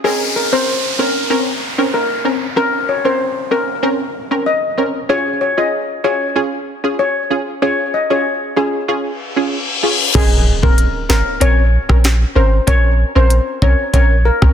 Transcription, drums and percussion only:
10.15 kick, closed hi-hat, crash
10.63 kick
10.78 closed hi-hat
11.10 cross-stick, snare
11.41 closed hi-hat
11.89 kick, cross-stick
12.04 cross-stick, snare, closed hi-hat
12.67 kick, closed hi-hat
13.30 closed hi-hat
13.62 kick
13.94 kick, closed hi-hat
14.42 kick, cross-stick

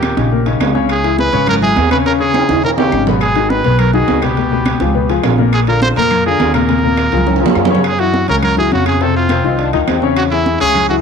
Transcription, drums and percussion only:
0.03 high conga, high timbale, low timbale, claves
0.17 high conga, high timbale
0.32 high conga
0.46 high conga, high timbale
0.60 high conga, high timbale, low timbale, claves
0.75 high conga
0.89 high timbale, claves
1.04 high conga, high timbale
1.19 high conga, low timbale
1.33 high conga, high timbale
1.47 high conga, low conga, high timbale, claves
1.62 high conga, low conga
1.76 high conga, high timbale, low timbale
1.91 high conga, high timbale, claves
2.05 high conga, high timbale
2.20 high conga
2.34 high conga, high timbale, claves
2.49 high conga, high timbale
2.63 high conga, high timbale
2.78 high conga, low timbale
2.92 low conga, claves
3.07 low conga, low timbale
3.21 high conga, high timbale, claves
3.35 high conga, high timbale
3.50 high conga, low timbale
3.64 high conga, high timbale
3.79 high conga, low conga, high timbale, claves
3.94 high conga, low conga
4.08 high conga, high timbale, low timbale
4.22 high timbale, claves
4.37 high conga, high timbale
4.51 high conga
4.66 high conga, high timbale, low timbale, claves
4.80 high conga, high timbale
4.95 high conga
5.09 high conga, high timbale
5.23 high conga, high timbale, low timbale, claves
5.38 high conga
5.53 high timbale, claves
5.67 high conga, high timbale
5.82 high conga, low timbale
5.96 high conga, high timbale
6.11 high conga, low conga, high timbale, claves
6.26 high conga
6.40 high conga, high timbale, low timbale
6.54 high conga, high timbale, claves
6.69 high conga, high timbale
6.79 high conga
6.88 high conga
6.97 high timbale, low timbale, claves
7.12 high timbale
7.17 low conga
7.27 low conga, high timbale
7.36 high timbale
7.46 low conga, low timbale
7.55 low timbale, claves
7.65 low conga, low timbale
7.75 low conga, low timbale
7.84 high timbale, claves
7.99 high conga, high timbale
8.14 high conga
8.28 high conga, high timbale
8.42 high conga, low conga, high timbale, claves
8.57 high conga, low conga
8.71 high conga, high timbale
8.86 high conga, high timbale, claves
9.01 high conga, high timbale
9.15 high conga
9.29 high conga, high timbale, claves
9.59 high conga, high timbale
9.73 high conga, high timbale
9.88 high conga, high timbale, low timbale, claves
10.02 high conga
10.17 high conga, high timbale, claves
10.31 high conga, high timbale
10.46 high conga
10.60 high timbale
10.75 high conga, low conga, high timbale, claves
10.90 high conga, low conga

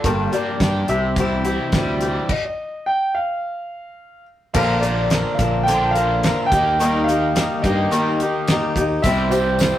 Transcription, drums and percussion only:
0.04 kick, closed hi-hat
0.33 closed hi-hat
0.60 kick, snare, closed hi-hat
0.88 closed hi-hat
1.16 kick, closed hi-hat
1.45 closed hi-hat
1.72 kick, snare, closed hi-hat
2.01 closed hi-hat
2.29 kick, crash
4.54 kick, crash
4.83 closed hi-hat
5.10 snare, closed hi-hat
5.39 kick, closed hi-hat
5.68 closed hi-hat
5.95 closed hi-hat
6.23 snare, closed hi-hat
6.52 kick, closed hi-hat
6.80 closed hi-hat
7.09 closed hi-hat
7.36 snare, closed hi-hat
7.64 kick, closed hi-hat
7.92 closed hi-hat
8.20 closed hi-hat
8.48 snare, closed hi-hat
8.76 kick, closed hi-hat
9.03 kick, closed hi-hat, tambourine
9.31 closed hi-hat, tambourine
9.59 snare, closed hi-hat, tambourine

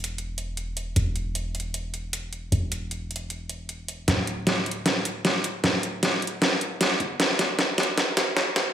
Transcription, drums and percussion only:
0.04 closed hi-hat
0.18 closed hi-hat
0.38 closed hi-hat
0.57 closed hi-hat
0.77 closed hi-hat
0.96 closed hi-hat
1.16 closed hi-hat
1.35 closed hi-hat
1.55 closed hi-hat
1.60 closed hi-hat
1.74 closed hi-hat
1.94 closed hi-hat
2.13 closed hi-hat
2.33 closed hi-hat
2.52 closed hi-hat
2.72 closed hi-hat
2.91 closed hi-hat
3.11 closed hi-hat
3.16 closed hi-hat
3.30 closed hi-hat
3.49 closed hi-hat
3.69 closed hi-hat
3.88 closed hi-hat
4.08 snare, closed hi-hat
4.27 closed hi-hat
4.47 snare, closed hi-hat
4.66 closed hi-hat
4.71 closed hi-hat
4.86 snare, closed hi-hat
5.05 closed hi-hat
5.25 snare, closed hi-hat
5.44 closed hi-hat
5.64 snare, closed hi-hat
5.83 closed hi-hat
6.03 snare, closed hi-hat
6.22 closed hi-hat
6.27 closed hi-hat
6.42 snare, closed hi-hat
6.61 closed hi-hat
6.81 snare, closed hi-hat
7.00 closed hi-hat
7.20 snare, closed hi-hat
7.39 snare, closed hi-hat
7.59 snare, closed hi-hat
7.78 snare, closed hi-hat
7.83 closed hi-hat
7.98 snare, closed hi-hat
8.17 snare, closed hi-hat
8.37 snare, closed hi-hat
8.56 snare, closed hi-hat

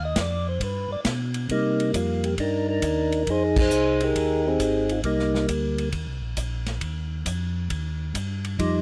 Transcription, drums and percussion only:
0.16 kick, snare, hi-hat pedal, ride
0.60 kick, ride
1.05 kick, snare, hi-hat pedal, ride
1.34 ride
1.49 kick, ride
1.80 ride
1.94 kick, hi-hat pedal, ride
2.24 ride
2.38 kick, ride
2.82 kick, hi-hat pedal, ride
3.12 ride
3.27 kick, ride
3.56 kick, crash
3.71 hi-hat pedal
4.00 ride
4.15 kick, ride
4.60 kick, hi-hat pedal, ride
4.89 ride
5.04 kick, ride
5.19 snare
5.35 snare
5.48 kick, hi-hat pedal, ride
5.78 ride
5.92 kick, ride
6.37 kick, hi-hat pedal, ride
6.66 snare, ride
6.81 kick, ride
7.26 kick, hi-hat pedal, ride
7.70 kick, ride
8.15 kick, hi-hat pedal, ride
8.44 ride
8.59 kick, ride

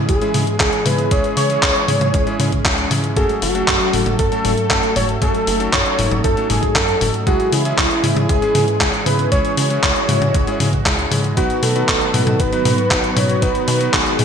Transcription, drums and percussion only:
0.09 kick, closed hi-hat
0.22 closed hi-hat
0.34 open hi-hat, high tom
0.47 closed hi-hat
0.60 kick, clap, closed hi-hat
0.73 closed hi-hat
0.86 open hi-hat, high tom
0.98 closed hi-hat
1.11 kick, closed hi-hat
1.24 closed hi-hat
1.37 open hi-hat
1.50 closed hi-hat
1.63 kick, clap, closed hi-hat
1.76 closed hi-hat
1.88 open hi-hat, high tom
2.01 closed hi-hat, high tom
2.14 kick, closed hi-hat
2.27 closed hi-hat
2.40 open hi-hat, high tom
2.52 kick, closed hi-hat
2.65 kick, clap, closed hi-hat
2.78 closed hi-hat
2.91 open hi-hat, high tom
3.04 closed hi-hat
3.17 kick, closed hi-hat
3.29 closed hi-hat
3.42 open hi-hat
3.55 closed hi-hat
3.68 kick, clap, closed hi-hat
3.81 closed hi-hat
3.93 open hi-hat, high tom
4.06 closed hi-hat, high tom
4.19 kick, closed hi-hat
4.32 closed hi-hat
4.45 open hi-hat, high tom
4.58 closed hi-hat
4.70 kick, clap, closed hi-hat
4.83 closed hi-hat
4.96 open hi-hat, high tom
5.09 closed hi-hat
5.22 kick, closed hi-hat
5.35 closed hi-hat
5.47 open hi-hat
5.60 closed hi-hat
5.73 kick, clap, closed hi-hat
5.86 closed hi-hat
5.99 open hi-hat, high tom
6.11 closed hi-hat, high tom
6.24 kick, closed hi-hat
6.37 closed hi-hat
6.50 open hi-hat, high tom
6.63 kick, closed hi-hat
6.76 kick, clap, closed hi-hat
6.88 closed hi-hat
7.01 open hi-hat, high tom
7.14 closed hi-hat
7.27 kick, closed hi-hat
7.40 closed hi-hat
7.53 open hi-hat
7.65 closed hi-hat
7.78 kick, clap, closed hi-hat
7.91 closed hi-hat
8.04 open hi-hat, high tom
8.17 closed hi-hat, high tom
8.29 kick, closed hi-hat
8.42 closed hi-hat
8.55 open hi-hat, high tom
8.68 closed hi-hat
8.81 kick, clap, closed hi-hat
8.94 closed hi-hat
9.06 open hi-hat, high tom
9.19 closed hi-hat
9.32 kick, closed hi-hat
9.45 closed hi-hat
9.57 open hi-hat
9.70 closed hi-hat
9.83 kick, clap, closed hi-hat
9.96 closed hi-hat
10.09 open hi-hat, high tom
10.22 closed hi-hat, high tom
10.34 kick, closed hi-hat
10.47 closed hi-hat
10.60 open hi-hat, high tom
10.73 kick, closed hi-hat
10.86 kick, clap, closed hi-hat
10.99 closed hi-hat
11.12 open hi-hat, high tom
11.24 closed hi-hat
11.37 kick, closed hi-hat
11.50 closed hi-hat
11.63 open hi-hat
11.76 closed hi-hat
11.88 kick, clap, closed hi-hat
12.01 closed hi-hat
12.14 open hi-hat, high tom
12.27 closed hi-hat, high tom
12.40 kick, closed hi-hat
12.53 closed hi-hat
12.65 open hi-hat, high tom
12.78 closed hi-hat
12.91 kick, clap, closed hi-hat
13.04 closed hi-hat
13.17 open hi-hat, high tom
13.30 closed hi-hat
13.42 kick, closed hi-hat
13.55 closed hi-hat
13.68 open hi-hat
13.81 closed hi-hat
13.93 kick, clap, closed hi-hat
14.06 closed hi-hat
14.19 open hi-hat, high tom

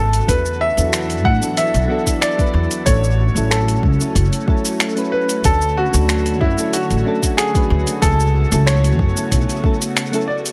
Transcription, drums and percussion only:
0.13 closed hi-hat, shaker
0.28 kick, closed hi-hat, shaker
0.46 shaker
0.78 shaker
0.93 finger snap, closed hi-hat, shaker
1.10 closed hi-hat, shaker
1.25 kick
1.42 shaker
1.57 closed hi-hat, shaker
1.74 closed hi-hat, shaker
2.07 kick, closed hi-hat, shaker
2.22 finger snap, closed hi-hat, shaker
2.39 kick, closed hi-hat, shaker
2.71 closed hi-hat, shaker
2.86 kick, closed hi-hat, shaker
3.04 shaker
3.36 shaker
3.51 finger snap, closed hi-hat, shaker
3.68 closed hi-hat, shaker
3.83 kick
4.01 shaker
4.15 kick, closed hi-hat, shaker
4.33 closed hi-hat, shaker
4.48 kick
4.65 closed hi-hat, shaker
4.80 finger snap, closed hi-hat, shaker
4.97 closed hi-hat, shaker
5.29 closed hi-hat, shaker
5.44 kick, closed hi-hat, shaker
5.61 shaker
5.94 shaker
6.09 finger snap, closed hi-hat, shaker
6.26 closed hi-hat, shaker
6.41 kick
6.58 shaker
6.73 closed hi-hat, shaker
6.91 closed hi-hat, shaker
7.23 kick, closed hi-hat, shaker
7.38 finger snap, closed hi-hat, shaker
7.55 kick, closed hi-hat, shaker
7.87 closed hi-hat, shaker
8.02 kick, closed hi-hat, shaker
8.20 shaker
8.52 closed hi-hat, shaker
8.67 finger snap, closed hi-hat, shaker
8.84 closed hi-hat, shaker
8.99 kick
9.17 shaker
9.31 kick, closed hi-hat, shaker
9.49 closed hi-hat, shaker
9.64 kick
9.82 closed hi-hat, shaker
9.97 finger snap, closed hi-hat, shaker
10.13 closed hi-hat, shaker
10.46 closed hi-hat, shaker

